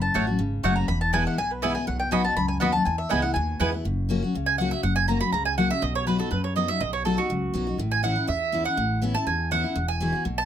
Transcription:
Already playing: F#2
0.02 A5
0.14 A1 F#3 A3 C#4 F#4 C#5 F#5
0.27 C#4 F#4
0.39 G#1 C#3
0.63 F#1 F#3 A3 C#4 F#4 C#5 F#5 C#6
0.76 A#5
0.88 E1 E2 B5
1.01 A5
1.13 E3 G#3 B3 E4 B4 G#5
1.27 F#5
1.38 B1 B2 G#5
1.51 B4
1.62 E3 G#3 B3 E4 B4 E5 G#5
1.75 B3 E4 G#5
1.87 B1 B2 F#5
2.00 G5
2.11 B1 F#3 B3 D#4 F#4 D#5 G#5 B5
2.24 D#4 F#4 A5
2.36 C#2 F#2 B5
2.48 G#5
2.60 D#2 F#3 B3 D#4 F#4 D#5 F#5 B5
2.72 D#4 F#4 A5
2.85 E2 G#5
2.98 E5
3.09 C#2 E3 G#3 B3 E4 B4 D#5 G#5
3.22 B3 E4 F#5
3.34 D#2 B2 G#5
3.60 E2 E3 G#3 B3 E4 B4 G#5
3.72 B3 E4
3.85 F#1 F#2
4.09 F#3 A#3 C#4 F#4
4.22 C#4 F#4
4.34 C#2 C#3
4.46 G#5
4.58 F#3 A#3 C#4 F#4 F#5
4.71 C#4 F#4 E5
4.83 F#1 F#2 F#5
4.96 G#5
5.08 F#3 A#3 C#4 F#4 A#5
5.21 C#4 F#4 B5
5.32 C#2 C#3 A#5
5.45 G#5
5.58 F#3 A#3 C#4 F#4 F#5
5.70 C#4 F#4 E5
5.82 B1 B2 D#5
5.95 C#5
6.07 F#3 B3 D#4 F#4 B4
6.18 D#4 F#4 A4
6.31 F#2 B4
6.44 C#5
6.56 F#3 B3 D#4 F#4 D#5
6.68 D#4 F#4 E5
6.80 B1 B2 D#5
6.93 C#5
7.05 F#3 B3 D#4 F#4 A4
7.17 D#4 F#4
7.29 C#2 F#2
7.54 B1 F#3 B3 D#4 F#4
7.67 D#4 F#4
7.78 A1 A2
7.91 G#5
8.03 E3 B3 C#4 E4 F#5
8.16 C#4 E4
8.27 E2 E5
8.52 E3 B3 C#4 E4
8.64 C#4 E4 F#5
8.77 A1 A2
9.02 E3 B3 C#4 E4
9.15 C#4 E4 A5
9.26 E2 G#5
9.51 E3 B3 C#4 E4 F#5
9.64 C#4 E4
9.76 E1 E2
9.88 G#5
10.00 E3 G#3 B3 F#4
10.13 B3 F#4
10.25 B1 B2
10.38 A5

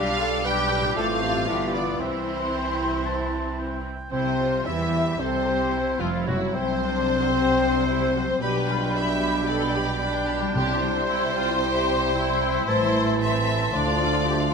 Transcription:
Already playing: B1 B2 G3 D4 F4 G4 D5 F5 D6
0.19 A4
0.45 G3 D4 G4 B4 G5
0.71 B4
0.79 A2
0.83 C4
0.88 F4
0.92 C4 F4 A4 C5
0.96 A1 A3 C4 A4 F5
1.21 F4 G4
1.30 G2
1.35 B3
1.39 E4
1.44 B3 E4 F4 A4 D5
1.48 G1 E3 A3 B3 G4 D6
1.73 B3 D4 F4 D5
1.82 C3
1.87 C4
1.91 E4
1.96 C4 E4 G4
2.00 C2 E3 C4 E4 C5 E5 C6
2.53 G5
3.05 A5
3.60 G5
4.10 C2 C3 C4 E4 C5
4.25 G3
4.38 F4
4.51 E4
4.65 E2 E3 E4 G4 E5
4.92 E5
5.05 G5
5.18 C2 C3 C4 A4 C5 E5
5.33 G5
5.46 G4 E5
5.73 E4 G4
5.99 F1 F2 F3 G3 F4
6.12 C4
6.25 F#1 F#2 C3 F#3 F#4
6.41 F#3
6.54 C2 C3 A3 C4 C5
6.67 D4
6.81 D4 F#4
6.94 A4
7.08 D5
7.21 F#5
7.34 C4 D5
7.48 F#5
7.60 D4 D5
7.74 A4
7.88 E4 F#4
8.01 A3
8.14 F#3 F#4
8.28 A3
8.40 B1 B2 G3 D4 G4 B4 G5 B5
8.55 B3 G5
8.68 G3 F4 B5
8.82 D4 G5
8.94 G4 E5 B5
9.10 G5
9.22 D5 B5
9.35 G5
9.48 A4 D5 B5
9.61 G5
9.74 G4 D5 B5
9.87 G4 G5
10.00 D4 B5
10.13 G3 G5
10.26 B3 G4 B5
10.41 G3 G5
10.53 C2 C3 E4 G4 G5 C6
10.68 E5
10.80 G3 C5 G5
10.95 E4 E5
11.08 E4 G4 G5
11.21 E5
11.35 F4 E5 G5
11.48 E5 G5
11.61 G4 E5 G5
11.74 E5 G5
11.88 E5 G5
12.01 G4 E5
12.14 E4 G5
12.28 G3 E5
12.41 C4 G5
12.54 G3 E5
12.67 A1 A2 E3 A3 C5 A5
12.81 E3 E5
12.94 A3 C5
13.07 E4 E5
13.20 C4 C5 E5
13.34 A4 E5
13.46 C5 E5
13.60 E5 C6
13.73 D2 D3 F3 D4 F4 D5
13.86 D4 F5
14.00 A3 F4 D5
14.12 F4 F5
14.26 G4 C5 D5
14.40 A4 F5

